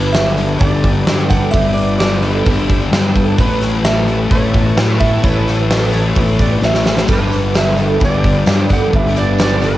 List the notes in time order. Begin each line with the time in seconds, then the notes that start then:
Already playing: G1 G2 D3 G3 D4 G4 B4 D5 G5 D6
0.12 E5, snare, open hi-hat
0.37 G2 D3 G3 A4, open hi-hat
0.59 G1 G4 D5, kick, open hi-hat
0.84 kick, open hi-hat
1.06 G2 D3 G3, snare, open hi-hat
1.30 A4 F#5, kick, open hi-hat
1.51 G1 G2 D3 G3 D4 B4 E5 E6, kick, open hi-hat
1.55 G4 B4
1.74 D5, open hi-hat
1.98 D5, snare, open hi-hat
2.21 G2 D3 G3 A4 B4, open hi-hat
2.46 G1 G4, kick, open hi-hat
2.70 kick, open hi-hat
2.91 G2 D3 G3, snare, open hi-hat
3.15 A4, kick, open hi-hat
3.37 A1 A2 E3 A3 C#4 E4 B4 E5 A5 C#6, kick, open hi-hat
3.41 B4
3.61 snare, open hi-hat
3.84 E5, snare, open hi-hat
4.08 A2 E3 A3 A4, open hi-hat
4.31 A1 G4 C#5, kick, open hi-hat
4.54 kick, open hi-hat
4.77 A2 E3 A3, snare, open hi-hat
5.00 A4 E5, kick, open hi-hat
5.22 A1 A2 E3 A3 C#4 E4 B4 C#5, kick, open hi-hat
5.26 B4
5.48 snare, open hi-hat
5.71 snare, open hi-hat
5.92 A2 E3 A3 A4 C#5, open hi-hat
6.16 A1 G4, kick, open hi-hat
6.39 D5, kick, open hi-hat
6.61 A1 A2 E3 A3 E5, snare
6.74 snare
6.84 A4, snare
6.97 snare
7.07 G1 G2 D3 G3 D4 G4 B4 D5 G5 D6, kick, open hi-hat, tambourine, splash
7.12 B4
7.31 open hi-hat, tambourine
7.54 snare, open hi-hat, tambourine
7.58 E5
7.76 G2 D3 G3 A4, open hi-hat, tambourine
8.00 G1 G4, kick, open hi-hat, tambourine
8.05 D5
8.24 kick, open hi-hat
8.45 G2 D3 G3, snare, open hi-hat, tambourine
8.53 C#5
8.69 A4 F#5, kick, open hi-hat, tambourine
8.91 G1 G2 D3 G3 D4 G4 B4 A5, kick, open hi-hat, tambourine
8.95 B4 E5
9.16 D5, open hi-hat, tambourine
9.38 D5, snare, open hi-hat, tambourine
9.60 G2 D3 G3 A4, open hi-hat, tambourine
9.65 B4